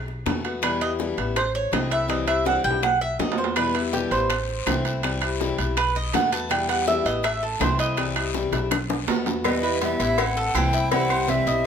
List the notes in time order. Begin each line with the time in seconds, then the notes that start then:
Already playing: B1
0.08 high bongo
0.26 E2 B2 D#3 A3 B3 F#4, high bongo, low bongo, high timbale, low timbale
0.44 A3 B3 F#4, high bongo, high timbale
0.62 B2 E3 G3 B3 E4 B4, high bongo, high timbale, claves
0.81 G3 B3 E4 D#5, high bongo, high timbale
0.99 B2 E3 G3 B3 E4, high bongo, low timbale
1.17 A1 G3 B3 E4, high bongo, high timbale
1.36 C5, muted steel-string acoustic guitar stroke, high bongo, high timbale, claves
1.55 C#5, high bongo
1.72 C2 E3 A3 C4 E4 D#5, high bongo, low bongo, high timbale, low timbale, claves
1.90 A3 C4 E4 E5, high timbale
2.08 C3 E3 G3 C4 E4 D#5, high bongo, high timbale
2.26 G3 C4 E4 E5, high timbale, claves
2.45 C3 E3 G3 C4 E4 F#5, high bongo, high timbale
2.63 B1 G3 C4 E4 G5, high bongo
2.71 high timbale
2.82 F#5, muted steel-string acoustic guitar stroke, high bongo, low timbale, claves
3.01 E5, high bongo
3.19 E2 B2 D#3 A3 B3 F#4 D#5, high bongo, low bongo, low timbale
3.32 low timbale
3.37 A3 B3 F#4 C5, high bongo
3.44 low timbale
3.56 B2 E3 G3 B3 E4 B4, high bongo, high timbale, long guiro, claves
3.74 G3 B3 E4, high bongo, high timbale
3.93 B2 E3 G3 B3 E4 G4, high bongo, low timbale, short guiro
4.11 A1 G3 B3 E4 C5, high bongo, high timbale, short guiro
4.30 muted steel-string acoustic guitar stroke, high bongo, high timbale, long guiro, claves
4.49 high bongo
4.66 C2 E3 A3 C4 E4, high bongo, low bongo, high timbale, low timbale, short guiro, claves
4.85 A3 C4 E4, high timbale, short guiro
5.03 C3 E3 G3 C4 E4, high bongo, high timbale, long guiro
5.22 G3 C4 E4, high timbale, claves
5.40 C3 E3 G3 C4 E4, high bongo, low timbale, short guiro
5.58 B1 G3 C4 E4, high bongo, high timbale, short guiro
5.77 B4, muted steel-string acoustic guitar stroke, high bongo, high timbale, long guiro, claves
5.96 D#5, high bongo
6.13 E2 B2 D#3 A3 B3 F#4 F#5, high bongo, low bongo, high timbale, low timbale, short guiro
6.31 A3 B3 F#4 A5, high bongo, high timbale, short guiro
6.49 B2 E3 G3 B3 E4 G5, high bongo, high timbale, long guiro, claves
6.67 G3 B3 E4 F#5, high bongo, high timbale
6.86 B2 E3 G3 B3 E4 E5, high bongo, low timbale, short guiro
7.04 A1 G3 B3 E4 D#5, high bongo, high timbale, short guiro
7.23 E5, muted steel-string acoustic guitar stroke, high bongo, high timbale, long guiro, claves
7.43 A4, high bongo
7.59 C2 E3 A3 C4 E4 C5, high bongo, low bongo, high timbale, low timbale, short guiro, claves
7.78 A3 C4 E4 D#5, high timbale, short guiro
7.97 C3 E3 G3 C4 E4, high bongo, high timbale, long guiro
8.15 G3 C4 E4, high timbale, claves
8.34 C3 E3 G3 C4 E4, high bongo, low timbale, short guiro
8.52 B1 G3 C4 E4, high bongo, high timbale, short guiro
8.71 muted steel-string acoustic guitar stroke, low bongo, high timbale, long guiro, claves
8.90 low bongo, high timbale
9.07 E2 B2 D#3 A3 B3 F#4, low timbale, short guiro
9.26 A3 B3 F#4, low bongo, low timbale, short guiro
9.44 B2 E3 G3 B3 E4 D#5, cowbell, low agogo, long guiro, claves
9.62 G3 B3 E4 B4
9.81 B2 E3 G3 B3 E4 E5, cowbell, low timbale, low agogo, short guiro
9.99 A1 G3 B3 E4, cowbell, low agogo, short guiro
10.18 C4 F#5, muted steel-string acoustic guitar stroke, cowbell, low agogo, long guiro, claves
10.37 A4, cowbell
10.54 C2 E3 A3 C4 E4 G5, cowbell, low timbale, low agogo, short guiro, claves
10.73 A3 C4 E4, cowbell, short guiro
10.91 C3 E3 G3 C4 E4 F#5, cowbell, low agogo, long guiro
11.09 G3 C4 E4 C5, low agogo, claves
11.27 C3 E3 G3 C4 E4 E5, cowbell, low timbale, short guiro
11.46 B1 G3 C4 E4 D#5, cowbell, short guiro